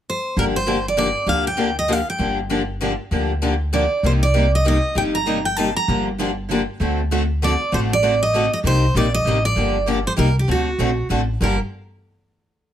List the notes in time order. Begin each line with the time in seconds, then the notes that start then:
0.10 C5
0.36 G1 D3 F3 A#3 D4 G4 A#4
0.56 C5
0.66 D3 F3 A#3 D4 G4
0.88 D5
0.97 D3 F3 A#3 D4 G4 D5
1.26 D2 D3 F3 A#3 D4 G4 F5
1.47 G5
1.57 D3 F3 A#3 D4 G4
1.79 D#5
1.88 D3 F3 A#3 D4 G4
1.93 F5
2.10 G5
2.18 G1 D3 F3 A#3 D4 G4
2.50 D3 F3 A#3 D4 G4
2.81 D3 F3 A#3 D4 G4
3.11 D2 D3 F3 A#3 D4 G4
3.42 D3 F3 A#3 D4 G4
3.73 D3 F3 A#3 D4 G4 D5
4.03 C2 C3 G3 A#3 D#4 G4 C5
4.23 D5
4.34 C3 G3 A#3 D#4 G4
4.55 D#5
4.65 C3 G3 A#3 D#4 G4 D#5
4.95 G1 C3 G3 A#3 D#4 G4 G5
5.15 A#5
5.26 C3 G3 A#3 D#4 G4
5.45 G5
5.57 C3 G3 A#3 D#4 G4 A5
5.76 A#5
5.88 G1 D3 F3 A#3 D4 G4
6.19 D3 F3 A#3 D4 G4
6.51 D3 F3 A#3 D4 G4
6.80 D2 D3 A3 C4 F#4 A4
7.11 D3 A3 C4 F#4 A4
7.42 D3 A3 C4 F#4 A4 D5
7.72 A1 D3 A3 C4 F#4 A4 C5
7.93 D5
8.03 D3 A3 C4 F#4 A4
8.23 D#5
8.34 D3 A3 C4 F#4 A4
8.53 D#5
8.64 C2 C3 G3 A#3 D#4 G4 C5
8.94 A#1 C3 G3 A#3 D#4 G4 D5
9.14 D#5
9.25 A1 C3 G3 A#3 D#4 G4
9.45 D5
9.56 G1 D3 F3 A#3 D4 G4
9.87 D3 F3 A#3 D4 G4
10.07 C5
10.17 C2 C3 G3 A#3 D#4 G4 A#4
10.39 G4
10.48 D2 D3 A3 C4 F#4 A4
10.78 A#1 D3 A3 C4 F#4 A4
11.10 A1 D3 A3 C4 F#4 A4
11.40 G1 G2 D3 F3 A#3 D4 G4 A#4